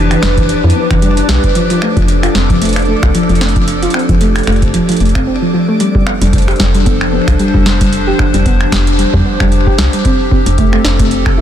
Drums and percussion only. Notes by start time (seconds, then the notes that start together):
0.11 finger snap, closed hi-hat
0.23 finger snap, snare
0.37 kick, closed hi-hat
0.49 closed hi-hat
0.70 closed hi-hat
0.91 finger snap, kick, closed hi-hat
1.02 closed hi-hat
1.17 closed hi-hat
1.29 snare
1.44 kick, closed hi-hat
1.55 closed hi-hat
1.70 closed hi-hat
1.82 finger snap
1.97 kick, closed hi-hat
2.08 closed hi-hat
2.23 finger snap, closed hi-hat
2.35 snare
2.50 kick, closed hi-hat
2.62 closed hi-hat
2.65 closed hi-hat
2.69 closed hi-hat
2.73 finger snap, closed hi-hat
2.76 closed hi-hat
2.79 closed hi-hat
2.82 closed hi-hat
2.85 closed hi-hat
3.03 finger snap, kick, closed hi-hat
3.15 closed hi-hat
3.29 closed hi-hat
3.35 closed hi-hat
3.41 snare
3.49 closed hi-hat
3.56 kick, closed hi-hat
3.68 closed hi-hat
3.83 closed hi-hat
3.90 finger snap, closed hi-hat
3.99 closed hi-hat
4.09 kick, closed hi-hat
4.21 closed hi-hat
4.36 finger snap, closed hi-hat
4.38 closed hi-hat
4.43 finger snap, closed hi-hat
4.47 closed hi-hat
4.52 closed hi-hat
4.56 closed hi-hat
4.62 kick, closed hi-hat
4.74 closed hi-hat
4.89 closed hi-hat
4.92 closed hi-hat
4.97 closed hi-hat
5.00 closed hi-hat
5.05 closed hi-hat
5.09 closed hi-hat
5.15 finger snap, kick, closed hi-hat
5.80 closed hi-hat
5.95 kick
6.07 finger snap
6.21 closed hi-hat
6.33 kick, closed hi-hat
6.38 closed hi-hat
6.42 closed hi-hat
6.48 finger snap, closed hi-hat
6.51 closed hi-hat
6.56 kick, snare, closed hi-hat
6.74 closed hi-hat
6.86 kick, closed hi-hat
7.01 finger snap
7.28 finger snap, kick, closed hi-hat
7.39 closed hi-hat
7.54 kick
7.66 snare
7.81 kick, closed hi-hat
7.93 closed hi-hat
8.19 finger snap, kick
8.34 closed hi-hat
8.46 kick, closed hi-hat
8.61 finger snap
8.72 finger snap, kick, snare
8.87 closed hi-hat
8.99 closed hi-hat
9.14 kick
9.40 finger snap, kick
9.52 closed hi-hat
9.67 kick
9.78 snare
9.93 closed hi-hat
10.05 kick, closed hi-hat
10.31 kick
10.46 closed hi-hat
10.58 kick, closed hi-hat
10.73 finger snap
10.85 snare
10.99 kick, closed hi-hat
11.11 closed hi-hat
11.26 finger snap, kick